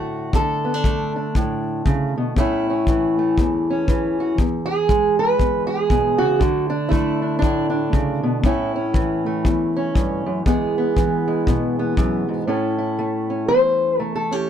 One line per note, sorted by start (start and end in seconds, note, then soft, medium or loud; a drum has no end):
0.00 0.33 A2 medium
0.00 0.32 D3 medium
0.00 0.68 A3 medium
0.00 0.32 F#4 medium
0.33 2.36 D3 medium
0.33 1.35 A4 medium
0.33 kick medium
0.65 0.74 B3 soft
0.74 1.15 D4 soft
0.84 2.34 A3 medium
0.84 kick medium
1.16 2.34 D4 soft
1.35 1.86 A2 medium
1.35 kick medium
1.86 2.16 C#3 medium
1.86 kick medium
2.18 2.36 B2 medium
2.37 3.38 A2 medium
2.37 3.18 A3 medium
2.37 2.68 C#4 medium
2.37 4.20 E4 medium
2.37 kick medium
2.70 3.69 C#4 medium
2.87 3.87 E3 medium
2.87 kick medium
3.19 4.37 A3 soft
3.38 4.37 E2 medium
3.38 kick medium
3.70 4.37 C#4 medium
3.88 4.36 E3 medium
3.88 kick medium
4.20 4.37 F#4 medium
4.38 5.37 E2 medium
4.38 kick medium
4.66 5.18 G#4 loud
4.89 6.38 G#3 medium
4.89 kick medium
5.19 5.66 B4 loud
5.38 6.40 E2 medium
5.38 kick medium
5.67 6.39 G#4 medium
5.90 6.20 B2 medium
5.90 kick medium
6.18 6.40 C#3 medium
6.18 6.69 F#4 medium
6.40 8.42 D3 medium
6.40 6.90 A3 soft
6.40 kick medium
6.70 7.21 D4 medium
6.89 8.40 A3 medium
6.89 7.91 E4 medium
6.89 kick medium
7.22 7.38 D4 soft
7.39 7.92 A2 medium
7.39 7.68 D4 medium
7.39 kick medium
7.70 8.41 D4 medium
7.92 8.23 C#3 medium
7.92 kick medium
8.23 8.43 B2 medium
8.44 9.45 A2 medium
8.44 9.25 A3 medium
8.44 8.74 C#4 medium
8.44 10.47 E4 medium
8.44 kick medium
8.76 9.75 C#4 medium
8.94 10.96 E3 medium
8.94 kick medium
9.26 10.44 A3 medium
9.45 9.94 E2 medium
9.45 kick medium
9.76 10.44 C#4 medium
9.95 10.26 G2 medium
9.95 kick medium
10.26 10.45 F#2 medium
10.46 11.97 E2 medium
10.46 11.26 G#3 medium
10.46 10.77 B3 medium
10.46 12.47 G#4 medium
10.46 kick medium
10.78 11.78 B3 medium
10.97 12.46 E3 medium
10.97 kick medium
11.28 12.46 G#3 medium
11.47 12.46 B2 medium
11.47 kick medium
11.79 12.48 B3 medium
11.97 12.28 F#2 medium
11.97 kick medium
12.29 12.48 G#2 medium
12.47 13.49 A2 medium
12.47 13.29 C#4 soft
12.47 12.78 E4 soft
12.47 13.48 A4 medium
12.78 14.32 E4 soft
12.99 13.99 A3 medium
13.30 14.31 C#4 soft
13.48 14.50 E2 medium
13.48 13.99 C5 loud
13.99 14.50 A3 medium
13.99 14.15 A#4 loud
14.15 14.33 A4 medium
14.31 14.50 C#4 soft
14.31 14.50 G4 medium